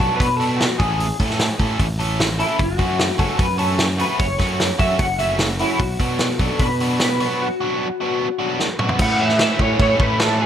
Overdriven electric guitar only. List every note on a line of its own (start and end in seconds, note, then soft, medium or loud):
0.01 0.27 F#3 medium
0.01 0.26 B3 medium
0.01 0.26 D4 medium
0.01 0.26 F#4 medium
0.40 0.67 F#3 medium
0.40 0.66 B3 medium
0.40 0.66 D4 medium
0.40 0.66 F#4 medium
0.80 1.06 E3 medium
0.80 1.06 A3 medium
0.80 1.06 C#4 medium
0.80 1.06 A4 medium
1.20 1.47 E3 medium
1.20 1.47 A3 medium
1.20 1.46 C#4 medium
1.20 1.46 A4 medium
1.59 1.86 E3 medium
1.59 1.86 A3 medium
1.59 1.86 C#4 medium
1.59 1.86 A4 medium
1.99 2.26 E3 medium
1.99 2.26 A3 medium
1.99 2.26 C#4 medium
1.99 2.25 A4 medium
2.39 2.60 E3 medium
2.39 2.60 A3 medium
2.39 2.60 C#4 medium
2.39 2.60 A4 medium
2.79 3.06 F#3 medium
2.79 3.06 A3 medium
2.79 3.06 C#4 medium
2.79 3.05 F#4 medium
3.18 3.46 F#3 medium
3.18 3.45 A3 medium
3.18 3.46 C#4 medium
3.18 3.45 F#4 medium
3.58 3.86 F#3 medium
3.58 3.86 A3 medium
3.58 3.86 C#4 medium
3.58 3.85 F#4 medium
3.99 4.26 F#3 medium
3.99 4.26 A3 medium
3.99 4.26 C#4 medium
3.99 4.26 F#4 medium
4.39 4.66 F#3 medium
4.39 4.66 A3 medium
4.39 4.65 C#4 medium
4.39 4.65 F#4 medium
4.79 5.06 F#3 medium
4.79 5.06 A3 medium
4.79 5.06 C#4 medium
4.79 5.05 F#4 medium
5.19 5.46 F#3 medium
5.19 5.46 A3 medium
5.19 5.46 C#4 medium
5.19 5.46 F#4 medium
5.61 5.81 F#3 medium
5.61 5.81 A3 medium
5.61 5.81 C#4 medium
5.61 5.80 F#4 medium
6.00 6.27 F#3 medium
6.00 6.27 B3 medium
6.00 6.26 D4 medium
6.00 6.26 F#4 medium
6.40 6.67 F#3 medium
6.40 6.67 B3 medium
6.40 6.67 D4 medium
6.40 6.66 F#4 medium
6.81 7.07 F#3 medium
6.81 7.07 B3 medium
6.81 7.07 D4 medium
6.81 7.07 F#4 medium
7.20 7.47 F#3 medium
7.20 7.47 B3 medium
7.20 7.47 D4 medium
7.20 7.46 F#4 medium
7.61 7.87 F#3 medium
7.61 7.87 B3 medium
7.61 7.87 D4 medium
7.61 7.87 F#4 medium
8.01 8.27 F#3 medium
8.01 8.27 B3 medium
8.01 8.27 D4 medium
8.01 8.27 F#4 medium
8.39 8.67 F#3 medium
8.39 8.67 B3 medium
8.39 8.66 D4 medium
8.39 8.66 F#4 medium
8.80 9.00 F#3 medium
8.80 9.00 B3 medium
8.80 9.00 D4 medium
8.80 9.00 F#4 medium
8.99 9.20 A2 loud
8.99 9.21 E3 loud
8.99 9.21 A3 loud
8.99 9.21 C#4 loud
8.99 9.22 E4 loud
9.20 9.39 A2 medium
9.20 9.40 E3 medium
9.20 9.41 A3 medium
9.20 9.41 C#4 medium
9.20 9.42 E4 medium
9.40 9.59 A2 medium
9.40 9.60 E3 medium
9.40 9.60 A3 loud
9.40 9.61 C#4 medium
9.40 9.61 E4 loud
9.59 9.78 A2 medium
9.59 9.80 E3 medium
9.59 9.79 A3 medium
9.59 9.80 C#4 loud
9.59 9.81 E4 medium
9.79 9.99 A2 medium
9.79 10.00 E3 medium
9.79 10.00 A3 medium
9.79 10.00 C#4 medium
9.79 10.02 E4 loud
10.00 10.17 A2 medium
10.00 10.19 E3 medium
10.00 10.19 A3 medium
10.00 10.19 C#4 medium
10.00 10.20 E4 loud
10.18 10.38 A2 medium
10.18 10.40 E3 medium
10.18 10.39 A3 medium
10.18 10.40 C#4 medium
10.18 10.42 E4 medium
10.39 10.46 A2 medium
10.39 10.46 E3 medium
10.39 10.46 A3 loud
10.39 10.46 C#4 medium
10.39 10.46 E4 loud